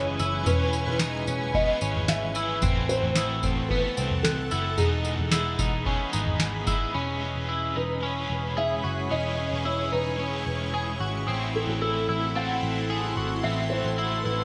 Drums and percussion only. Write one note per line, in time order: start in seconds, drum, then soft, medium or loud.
0.19 tambourine medium
0.46 floor tom loud
0.46 tambourine medium
0.73 tambourine medium
0.87 floor tom medium
0.99 snare loud
0.99 tambourine medium
1.27 floor tom medium
1.27 tambourine medium
1.54 kick medium
1.81 tambourine medium
1.95 floor tom medium
2.08 snare loud
2.08 tambourine medium
2.35 tambourine medium
2.62 kick loud
2.62 floor tom loud
2.62 tambourine medium
2.89 tambourine medium
3.02 floor tom soft
3.15 snare loud
3.15 tambourine medium
3.43 kick medium
3.43 floor tom medium
3.43 tambourine medium
3.70 kick medium
3.97 tambourine medium
4.11 floor tom medium
4.25 snare loud
4.25 tambourine medium
4.51 tambourine medium
4.78 floor tom loud
4.78 tambourine medium
5.05 tambourine medium
5.18 floor tom medium
5.32 snare loud
5.32 tambourine medium
5.59 kick medium
5.59 floor tom medium
5.59 tambourine medium
5.86 kick medium
6.13 tambourine medium
6.26 floor tom medium
6.40 snare loud
6.40 tambourine medium
6.67 kick medium
6.67 tambourine medium